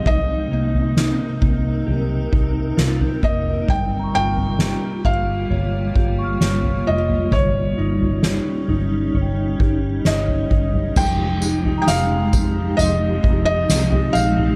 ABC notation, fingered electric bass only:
X:1
M:4/4
L:1/16
Q:1/4=66
K:Fm
V:1 name="Fingered electric bass" clef=bass
C,,2 C,,3 z C,,2 C,,2 C,,2 C,,2 F,,,2 | G,,,2 G,,,3 z G,,,2 G,,,2 G,,,2 G,,,2 F,,,2 | G,,,2 G,,,3 z G,,,2 G,,,2 G,,,2 G,,,2 G,,,2 | F,,,4 F,,,2 F,,2 F,,,2 F,,,2 C,,2 B,,,2 |]